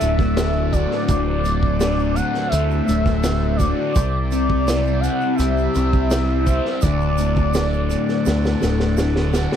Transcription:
0.00 0.85 D1 medium
0.00 1.43 A2 medium
0.00 0.37 D3 medium
0.00 1.44 A3 medium
0.00 3.92 A3 medium
0.00 0.28 D4 medium
0.00 3.93 D4 medium
0.00 3.93 F#4 medium
0.00 1.04 D5 medium
0.00 0.74 E5 loud
0.00 closed hi-hat medium
0.00 shaker medium
0.19 kick medium
0.19 snare soft
0.19 shaker soft
0.37 1.79 D3 medium
0.37 snare loud
0.37 closed hi-hat loud
0.37 shaker medium
0.72 2.52 F#4 medium
0.72 1.07 D5 medium
0.72 kick medium
0.72 closed hi-hat medium
0.72 shaker medium
0.91 snare soft
1.07 2.20 D1 loud
1.07 2.88 D2 medium
1.07 3.93 C5 medium
1.07 2.16 D5 loud
1.07 kick loud
1.07 closed hi-hat loud
1.07 shaker medium
1.45 2.15 A2 medium
1.45 closed hi-hat medium
1.45 shaker medium
1.63 kick medium
1.80 3.22 D3 medium
1.80 snare loud
1.80 closed hi-hat medium
1.80 shaker loud
1.99 shaker soft
2.15 2.86 A2 medium
2.15 2.50 F#5 loud
2.15 closed hi-hat medium
2.15 shaker medium
2.34 snare soft
2.34 shaker soft
2.48 3.95 A3 medium
2.48 3.58 E5 loud
2.48 closed hi-hat loud
2.53 2.80 D2 medium
2.53 shaker medium
2.70 shaker soft
2.87 3.72 D1 medium
2.87 3.95 A2 medium
2.87 closed hi-hat medium
2.87 shaker medium
3.05 kick medium
3.05 snare soft
3.05 shaker soft
3.24 3.96 D3 medium
3.24 snare loud
3.24 closed hi-hat loud
3.24 shaker loud
3.56 3.95 F#4 medium
3.56 3.92 D5 loud
3.56 kick medium
3.56 closed hi-hat medium
3.56 shaker medium
3.93 5.07 C2 loud
3.93 5.75 C3 medium
3.93 6.80 C4 medium
3.93 6.80 G4 medium
3.93 5.02 D5 loud
3.93 6.80 D5 medium
3.93 kick loud
3.93 closed hi-hat loud
3.93 shaker loud
3.97 6.80 E4 medium
4.32 5.02 C4 medium
4.32 closed hi-hat medium
4.32 shaker medium
4.50 kick medium
4.67 6.09 E4 medium
4.67 snare loud
4.67 closed hi-hat loud
4.67 shaker loud
4.86 shaker soft
5.00 5.73 C4 medium
5.00 5.37 F#5 loud
5.00 closed hi-hat medium
5.00 shaker medium
5.21 shaker soft
5.35 6.83 G4 medium
5.35 6.83 E5 loud
5.35 shaker medium
5.40 5.67 C2 medium
5.40 closed hi-hat medium
5.58 shaker soft
5.75 6.59 C2 loud
5.75 6.82 C4 medium
5.75 closed hi-hat medium
5.75 shaker medium
5.93 kick medium
5.93 shaker soft
6.10 6.82 E4 medium
6.10 snare loud
6.10 closed hi-hat loud
6.10 shaker loud
6.46 6.82 C5 medium
6.46 kick medium
6.46 closed hi-hat medium
6.46 shaker medium
6.65 snare soft
6.81 7.94 D1 loud
6.81 8.61 D2 medium
6.81 9.56 A3 medium
6.81 9.56 D4 medium
6.81 9.56 F#4 medium
6.81 8.97 D5 loud
6.81 9.56 D5 medium
6.81 kick loud
6.81 closed hi-hat loud
6.81 shaker loud
7.00 shaker soft
7.18 7.88 A2 medium
7.18 closed hi-hat medium
7.18 shaker medium
7.36 kick medium
7.36 shaker soft
7.54 8.96 D3 medium
7.54 snare loud
7.54 closed hi-hat medium
7.54 shaker loud
7.73 shaker soft
7.90 8.60 A2 medium
7.90 closed hi-hat medium
7.90 shaker medium
8.08 snare soft
8.08 shaker soft
8.26 8.54 D2 medium
8.26 9.56 A3 medium
8.26 snare medium
8.26 shaker medium
8.44 snare medium
8.44 shaker soft
8.62 9.46 D1 medium
8.62 9.56 A2 medium
8.62 snare medium
8.62 shaker medium
8.80 snare medium
8.80 shaker soft
8.97 9.56 D3 medium
8.97 snare loud
8.97 shaker medium
9.16 snare medium
9.33 9.56 F#4 medium
9.33 snare medium
9.33 shaker medium
9.52 snare medium
9.52 shaker soft

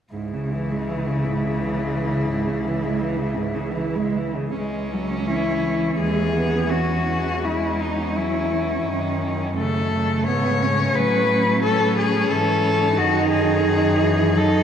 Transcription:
0.13 4.29 C#2 soft
0.13 0.35 G#2 soft
0.13 4.29 C#3 soft
0.13 4.30 E4 soft
0.34 0.56 C#3 soft
0.54 0.73 E3 soft
0.71 0.90 G#3 soft
0.88 1.10 E3 soft
1.08 1.28 C#3 soft
1.27 1.46 G#2 soft
1.45 1.63 C#3 soft
1.61 1.80 E3 soft
1.79 1.97 G#3 soft
1.95 2.15 E3 soft
2.13 2.29 C#3 soft
2.29 2.49 G#2 soft
2.48 2.67 C#3 soft
2.66 2.85 E3 soft
2.84 3.03 G#3 soft
3.01 3.20 E3 soft
3.19 3.38 C#3 soft
3.37 3.56 G#2 soft
3.55 3.75 C#3 soft
3.73 3.97 E3 soft
3.95 4.19 G#3 soft
4.17 4.38 E3 soft
4.36 4.55 C#3 soft
4.55 5.96 C#2 soft
4.55 4.94 G#3 soft
4.55 5.96 C#4 soft
4.92 5.31 F#3 soft
5.26 7.47 E3 soft
5.26 5.95 E4 soft
5.99 6.74 D#2 soft
5.99 6.35 G#3 soft
5.99 6.71 G#4 medium
6.36 6.73 B3 soft
6.70 8.86 E2 soft
6.70 7.44 C#4 soft
6.70 7.46 F#4 medium
7.44 8.18 G#3 soft
7.44 9.53 C#4 soft
7.44 7.81 E4 medium
7.80 8.17 D#4 soft
8.16 8.52 F#3 soft
8.16 8.86 E4 soft
8.51 8.88 E3 soft
8.87 10.30 F#2 soft
8.87 9.57 D#3 soft
9.57 9.92 C#3 soft
9.57 10.30 A3 soft
9.57 10.23 A4 medium
9.94 10.99 C#3 soft
10.26 10.96 G#2 soft
10.26 10.64 B3 soft
10.26 10.97 C#5 medium
10.62 11.63 C#4 medium
10.95 12.29 A2 soft
10.95 11.30 F#3 soft
10.95 11.62 B4 medium
11.31 12.30 F#3 medium
11.63 12.95 C#4 soft
11.63 11.96 A4 medium
11.98 12.32 G#4 medium
12.30 12.99 G#2 soft
12.30 12.99 E3 soft
12.30 12.98 A4 medium
12.97 14.63 F#2 medium
12.97 13.66 D#3 medium
12.97 14.35 D#4 medium
12.97 13.30 F#4 medium
13.30 14.39 G#4 medium
13.67 14.03 D#3 medium
14.02 14.37 E3 medium
14.35 14.63 F#3 medium
14.35 14.63 D#4 medium
14.35 14.63 A4 medium

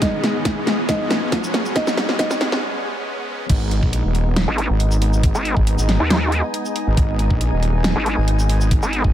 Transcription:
0.00 3.46 G#2 medium
0.00 3.45 G#3 medium
0.00 2.62 B3 medium
0.00 3.45 B3 medium
0.00 3.46 C#4 medium
0.00 0.59 D#4 medium
0.00 2.63 G#4 medium
0.00 0.47 D#5 medium
0.00 0.59 D#5 medium
0.00 0.64 G#5 medium
0.00 kick loud
0.00 snare medium
0.00 closed hi-hat medium
0.00 riser medium
0.24 snare medium
0.24 closed hi-hat medium
0.35 2.63 C#5 medium
0.45 kick loud
0.45 snare medium
0.45 closed hi-hat medium
0.51 2.63 F#5 medium
0.67 snare medium
0.67 closed hi-hat medium
0.89 1.46 D#4 medium
0.89 1.46 D#5 medium
0.89 kick loud
0.89 snare medium
0.89 closed hi-hat medium
1.10 snare medium
1.10 closed hi-hat medium
1.32 kick loud
1.32 snare medium
1.32 closed hi-hat medium
1.44 shaker soft
1.54 snare medium
1.54 closed hi-hat soft
1.65 shaker medium
1.76 2.17 D#4 medium
1.76 2.17 D#5 loud
1.76 kick loud
1.76 snare medium
1.76 closed hi-hat medium
1.87 snare medium
1.87 shaker medium
1.97 snare loud
1.97 closed hi-hat medium
2.09 snare medium
2.19 2.61 D#4 medium
2.19 2.61 D#5 loud
2.19 kick loud
2.19 snare medium
2.19 closed hi-hat medium
2.31 snare medium
2.31 shaker medium
2.41 snare loud
2.41 closed hi-hat medium
2.52 snare medium
3.49 3.81 G#1 loud
3.49 9.13 G#3 medium
3.49 9.13 B3 medium
3.49 9.13 D#4 medium
3.49 kick loud
3.49 closed hi-hat medium
3.49 crash loud
3.71 closed hi-hat medium
3.83 4.03 A#1 loud
3.83 kick medium
3.93 closed hi-hat medium
4.04 4.46 D#1 loud
4.04 9.13 G#5 medium
4.15 closed hi-hat medium
4.36 snare loud
4.36 closed hi-hat medium
4.48 4.68 G#1 medium
4.48 9.13 D#5 medium
4.58 closed hi-hat medium
4.70 5.33 G#1 loud
4.80 closed hi-hat medium
4.91 shaker medium
5.02 open hi-hat loud
5.13 shaker medium
5.23 kick loud
5.23 closed hi-hat medium
5.35 5.55 G#1 loud
5.35 shaker medium
5.45 closed hi-hat medium
5.57 5.77 G#1 loud
5.57 kick medium
5.67 closed hi-hat medium
5.78 5.98 G#1 medium
5.78 shaker medium
5.89 snare medium
5.89 closed hi-hat medium
6.00 6.42 D#2 loud
6.10 snare loud
6.10 closed hi-hat medium
6.32 closed hi-hat medium
6.54 closed hi-hat medium
6.65 shaker medium
6.76 open hi-hat medium
6.87 6.96 G#1 loud
6.97 7.29 G#1 loud
6.97 kick loud
6.97 closed hi-hat medium
7.19 closed hi-hat medium
7.31 7.50 A#1 loud
7.31 kick medium
7.41 closed hi-hat medium
7.52 7.94 D#1 loud
7.63 closed hi-hat medium
7.84 snare loud
7.84 closed hi-hat medium
7.96 8.16 G#1 loud
8.06 closed hi-hat medium
8.17 8.81 G#1 loud
8.28 closed hi-hat medium
8.39 shaker medium
8.49 open hi-hat medium
8.61 shaker medium
8.71 kick loud
8.71 closed hi-hat medium
8.83 9.03 G#1 loud
8.83 shaker medium
8.93 closed hi-hat medium
9.04 9.13 G#1 loud
9.04 kick medium

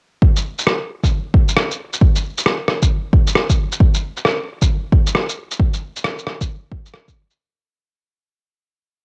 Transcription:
0.22 kick loud
0.37 shaker soft
0.59 shaker medium
0.67 cross-stick medium
1.04 kick medium
1.04 shaker medium
1.34 kick loud
1.48 shaker medium
1.57 cross-stick medium
1.71 shaker soft
1.93 shaker soft
2.01 kick loud
2.15 shaker soft
2.38 shaker medium
2.46 cross-stick loud
2.68 cross-stick medium
2.82 kick medium
2.82 shaker medium
3.13 kick loud
3.27 shaker medium
3.35 cross-stick loud
3.49 kick medium
3.49 shaker soft
3.72 shaker medium
3.80 kick loud
3.94 shaker soft
4.17 shaker medium
4.25 cross-stick loud
4.62 kick medium
4.62 shaker medium
4.92 kick loud
5.07 shaker medium
5.15 cross-stick loud
5.29 shaker soft
5.51 shaker medium
5.60 kick loud
5.74 shaker soft
5.96 shaker medium
6.04 cross-stick loud
6.19 shaker soft
6.27 cross-stick medium
6.41 kick medium
6.41 shaker medium
6.72 kick loud
6.86 shaker medium
6.94 cross-stick loud
7.08 kick medium
7.08 shaker soft
7.31 shaker medium

